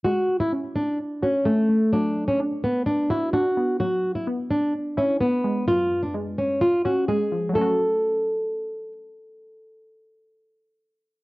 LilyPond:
<<
  \new Staff \with { instrumentName = "Nylon-string guitar" } { \time 4/4 \key fis \minor \tempo 4 = 128 fis'8. e'16 r8 d'8 r8 cis'8 a4 | d'8. cis'16 r8 b8 d'8 e'8 fis'4 | fis'8. e'16 r8 d'8 r8 cis'8 b4 | eis'8. d'16 r8 cis'8 eis'8 fis'8 gis'4 |
a'2. r4 | r1 | }
  \new Staff \with { instrumentName = "Synth pluck" } { \time 4/4 \key fis \minor gis4 cis'4. fis'8 cis'8 a8 | fis4 d'4. fis'8 d'8 b8 | fis4 b4. e'8 b8 gis8 | fis,4 gis4. cis'8 gis8 eis8 |
<fis a cis' fis'>1~ | <fis a cis' fis'>1 | }
>>